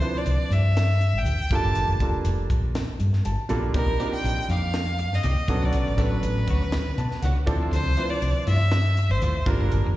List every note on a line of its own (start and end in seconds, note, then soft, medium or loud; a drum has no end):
0.00 0.86 F3 medium
0.00 0.86 C4 medium
0.00 0.86 D4 medium
0.00 0.86 E4 medium
0.00 0.86 B4 medium
0.00 0.19 C5 medium
0.00 closed hi-hat medium
0.15 0.54 D5 medium
0.15 muted fretless electric bass stroke soft
0.26 0.37 C2 medium
0.26 closed hi-hat medium
0.50 1.15 G2 medium
0.50 1.19 E5 medium
0.50 closed hi-hat soft
0.77 snare medium
0.77 closed hi-hat medium
1.01 closed hi-hat medium
1.13 1.23 A1 medium
1.18 1.57 G5 loud
1.25 1.36 D2 medium
1.25 closed hi-hat medium
1.50 1.61 G1 medium
1.50 1.94 G3 medium
1.50 1.94 A#3 medium
1.50 1.94 D4 medium
1.50 1.94 F4 medium
1.50 1.94 A4 medium
1.50 kick medium
1.50 closed hi-hat medium
1.55 2.03 A5 loud
1.64 1.73 G1 medium
1.75 1.86 G1 medium
1.75 closed hi-hat medium
1.87 2.16 F1 medium
2.00 2.85 G3 medium
2.00 2.85 A#3 medium
2.00 2.85 D4 soft
2.00 2.85 F4 soft
2.00 2.86 A4 medium
2.00 kick medium
2.00 closed hi-hat soft
2.24 2.44 F1 medium
2.24 closed hi-hat medium
2.50 2.80 A#1 medium
2.50 kick medium
2.50 closed hi-hat medium
2.75 snare medium
2.75 closed hi-hat medium
2.88 muted fretless electric bass stroke soft
3.00 3.20 G2 medium
3.00 closed hi-hat medium
3.13 snare soft
3.25 3.36 G1 medium
3.25 3.49 A5 medium
3.25 closed hi-hat medium
3.49 3.69 A#1 medium
3.49 3.71 G3 medium
3.49 3.71 A#3 medium
3.49 3.71 D4 medium
3.49 3.71 F4 medium
3.49 3.71 A4 medium
3.49 3.73 D5 medium
3.49 closed hi-hat medium
3.74 3.88 C2 medium
3.74 3.96 G3 medium
3.74 3.88 A#3 medium
3.74 3.96 C4 medium
3.74 3.96 D4 medium
3.74 3.96 D#4 medium
3.74 3.88 D#4 medium
3.74 3.88 G4 medium
3.74 3.96 A#4 medium
3.74 4.12 A#4 loud
3.74 3.87 D5 medium
3.74 kick loud
3.74 closed hi-hat medium
3.88 3.97 A#1 medium
3.88 muted clean electric guitar stroke soft
3.99 4.83 G3 medium
3.99 4.13 A#3 medium
3.99 4.84 C4 medium
3.99 4.84 D4 medium
3.99 4.84 D#4 medium
3.99 4.13 D#4 medium
3.99 4.84 F4 medium
3.99 4.13 G4 medium
3.99 4.13 D5 medium
3.99 closed hi-hat medium
4.12 4.48 G5 loud
4.12 muted fretless electric bass stroke soft
4.12 muted clean electric guitar stroke soft
4.24 4.35 A#1 medium
4.24 closed hi-hat medium
4.38 muted clean electric guitar stroke soft
4.49 5.11 F2 medium
4.49 4.63 A#3 medium
4.49 4.63 D#4 medium
4.49 4.62 G4 medium
4.49 4.62 D5 medium
4.49 5.16 F5 loud
4.49 closed hi-hat soft
4.63 muted clean electric guitar stroke soft
4.74 muted clean electric guitar stroke soft
4.74 snare medium
4.74 closed hi-hat medium
4.99 muted clean electric guitar stroke soft
4.99 closed hi-hat medium
5.11 5.21 G2 medium
5.11 5.66 D#5 medium
5.11 snare soft
5.24 5.34 C2 medium
5.24 5.37 A#3 medium
5.24 5.37 D#4 medium
5.24 5.37 G4 medium
5.24 5.37 D5 medium
5.24 closed hi-hat medium
5.38 muted clean electric guitar stroke soft
5.48 5.59 B1 medium
5.48 5.91 F#3 medium
5.48 5.91 B3 medium
5.48 5.91 C#4 medium
5.48 5.91 D4 medium
5.48 5.92 A4 medium
5.48 muted clean electric guitar stroke soft
5.48 kick medium
5.48 closed hi-hat medium
5.62 5.72 B1 medium
5.62 5.77 D4 soft
5.62 5.77 F#4 soft
5.62 5.76 C#5 soft
5.62 6.03 D5 medium
5.73 5.84 B1 medium
5.73 closed hi-hat medium
5.87 6.15 A1 medium
5.87 muted clean electric guitar stroke soft
5.97 6.82 F#3 medium
5.97 6.12 A3 medium
5.97 6.82 B3 soft
5.97 6.82 C#4 medium
5.97 6.82 D4 medium
5.97 6.12 D4 medium
5.97 6.12 F#4 medium
5.97 6.82 A4 medium
5.97 6.11 C#5 medium
5.97 kick medium
5.97 closed hi-hat medium
6.01 7.49 B4 medium
6.12 muted clean electric guitar stroke soft
6.23 6.42 A1 medium
6.23 closed hi-hat medium
6.39 muted clean electric guitar stroke soft
6.47 6.77 D2 medium
6.47 6.62 A3 medium
6.47 6.63 D4 medium
6.47 6.63 F#4 medium
6.47 6.62 C#5 medium
6.47 kick medium
6.47 closed hi-hat medium
6.63 muted clean electric guitar stroke soft
6.72 muted clean electric guitar stroke soft
6.72 snare medium
6.72 closed hi-hat medium
6.87 muted fretless electric bass stroke soft
6.98 7.17 B2 medium
6.98 7.21 A5 medium
6.98 muted clean electric guitar stroke soft
6.98 closed hi-hat medium
7.11 snare soft
7.22 7.33 C#2 medium
7.22 7.37 A3 medium
7.22 7.37 D4 medium
7.22 7.37 F#4 medium
7.22 7.36 C#5 medium
7.22 7.46 F#5 medium
7.22 closed hi-hat medium
7.38 muted clean electric guitar stroke soft
7.46 7.67 D2 medium
7.46 7.89 F3 medium
7.46 7.90 C4 medium
7.46 7.89 D4 medium
7.46 7.90 E4 medium
7.46 7.90 A4 loud
7.46 7.70 D5 medium
7.46 muted clean electric guitar stroke soft
7.46 kick medium
7.46 closed hi-hat medium
7.62 7.76 E4 soft
7.62 7.76 F4 soft
7.62 7.76 C5 soft
7.71 7.85 D2 medium
7.71 8.12 C5 loud
7.71 closed hi-hat medium
7.85 7.94 C2 medium
7.85 muted clean electric guitar stroke soft
7.97 8.81 F3 medium
7.97 8.11 A3 medium
7.97 8.81 C4 soft
7.97 8.81 D4 soft
7.97 8.81 E4 medium
7.97 8.10 E4 medium
7.97 8.10 F4 medium
7.97 8.81 B4 medium
7.97 8.10 C5 medium
7.97 closed hi-hat medium
8.10 8.47 D5 medium
8.10 muted fretless electric bass stroke soft
8.10 muted clean electric guitar stroke soft
8.22 8.32 C2 medium
8.22 closed hi-hat medium
8.37 muted clean electric guitar stroke soft
8.46 9.11 G2 medium
8.46 8.60 A3 medium
8.46 8.60 E4 medium
8.46 8.59 F4 medium
8.46 8.59 C5 medium
8.46 9.12 E5 loud
8.46 closed hi-hat medium
8.60 muted clean electric guitar stroke soft
8.71 muted clean electric guitar stroke soft
8.71 snare medium
8.71 closed hi-hat medium
8.97 muted clean electric guitar stroke soft
8.97 closed hi-hat medium
9.09 9.19 A1 medium
9.09 9.50 C5 medium
9.22 9.32 D2 medium
9.22 9.35 A3 medium
9.22 9.36 E4 medium
9.22 9.35 F4 medium
9.22 9.35 C5 medium
9.22 closed hi-hat medium
9.36 muted clean electric guitar stroke soft
9.46 9.57 G1 medium
9.46 9.89 G3 medium
9.46 9.88 A#3 medium
9.46 9.89 D4 medium
9.46 9.89 F4 medium
9.46 9.89 A#4 medium
9.46 9.97 A#4 medium
9.46 muted clean electric guitar stroke soft
9.46 kick loud
9.46 closed hi-hat soft
9.60 9.69 G1 medium
9.60 9.75 D4 soft
9.60 9.74 F4 soft
9.60 9.74 A4 soft
9.72 9.82 G1 medium
9.72 closed hi-hat medium
9.86 9.97 F1 medium
9.86 muted clean electric guitar stroke soft